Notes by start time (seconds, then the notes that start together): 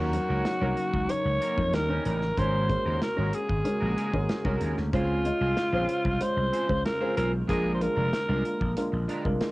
Already playing: D#2 C#3 F#3 A#3 C#4 D#4 F#4 A#4
0.13 F#3 C#4 D#4 A#4, muted clean electric guitar stroke, closed hi-hat
0.29 C#2 A#3 C#4 F#4 A#4
0.45 muted clean electric guitar stroke, snare, closed hi-hat
0.61 C2 F#3 A#3 C#4 D#4 F#4 A#4
0.77 muted clean electric guitar stroke, closed hi-hat
0.94 C#2, muted clean electric guitar stroke, kick
1.08 F#3 C#4 D#4 A#4 C#5, closed hi-hat
1.25 C#2, muted clean electric guitar stroke
1.41 A#3 C#4 F#4 A#4, closed hi-hat
1.57 F2 F#3 C#4 D#4 A#4, muted clean electric guitar stroke, kick
1.73 D#2 C#3 G3 C#4 D#4 A#4, muted clean electric guitar stroke, snare, closed hi-hat
1.89 G3 C#4 D#4 A#4
2.05 A1 G3 C#4 D#4 A#4, closed hi-hat
2.22 muted clean electric guitar stroke, snare
2.37 G#1 G#3 C#4 F#4 A#4 C5, kick, closed hi-hat
2.68 G#3 C#4 F#4 A#4, muted clean electric guitar stroke, kick, closed hi-hat
2.85 D#2 G#3 C#4 F#4 A#4
3.02 A#4, muted clean electric guitar stroke, snare, closed hi-hat
3.16 G#1 G#3 C#4 F#4 A#4
3.33 G#4, muted clean electric guitar stroke, closed hi-hat
3.49 G#1, muted clean electric guitar stroke, kick
3.64 G#3 C#4 F#4 A#4, muted clean electric guitar stroke, closed hi-hat
3.80 A#1 G#3 C#4 F#4 A#4
3.96 G#3 C#4 F#4 A#4, closed hi-hat
4.12 G#1 G#3 C#4 F#4 A#4, muted clean electric guitar stroke, kick
4.29 muted clean electric guitar stroke, snare, closed hi-hat
4.44 C2 G#3 C#4 F#4 A#4, kick
4.61 D#2 G#3 C#4 F#4 A#4, closed hi-hat
4.77 D2, muted clean electric guitar stroke, snare
4.92 C#2 G#3 C4 C#4 F4 G#4 C5, kick, closed hi-hat
5.24 G#3 C#4 F4 D#5, muted clean electric guitar stroke, closed hi-hat
5.41 C2 C4 F4 G#4 C5
5.57 muted clean electric guitar stroke, snare, closed hi-hat
5.73 A#1 G#3 C4 C#4 F4 G#4 C5
5.89 muted clean electric guitar stroke, closed hi-hat
6.05 C2, muted clean electric guitar stroke, kick
6.20 G#3 C#4 F4 C5, closed hi-hat
6.37 C2, muted clean electric guitar stroke
6.53 C4 F4 G#4 C5, closed hi-hat
6.68 C#2 G#3 C#4 F4 C5, muted clean electric guitar stroke, kick
6.85 A#4, muted clean electric guitar stroke, snare, closed hi-hat
7.00 G#3 C4 C#4 F4 G#4 C5
7.16 B1 C4 F4 G#4 A#4 C5, closed hi-hat
7.33 muted clean electric guitar stroke
7.48 A#1 D3 G#3 A#3 D4 F4 G#4 A#4, kick, closed hi-hat
7.74 C5
7.80 G#3 D4 F4 A#4, muted clean electric guitar stroke, closed hi-hat
7.96 F1 G#3 D4 F4 A#4
8.13 muted clean electric guitar stroke, snare, closed hi-hat
8.28 C2 G#3 D4 F4 A#4
8.44 muted clean electric guitar stroke, closed hi-hat
8.60 A#1, muted clean electric guitar stroke, kick
8.77 G#3 D4 F4 A#4, closed hi-hat
8.92 A#1, muted clean electric guitar stroke
9.08 G#3 D4 F4 A#4, closed hi-hat
9.24 C2 G#3 D4 F4 A#4, muted clean electric guitar stroke, kick
9.41 muted clean electric guitar stroke, snare, closed hi-hat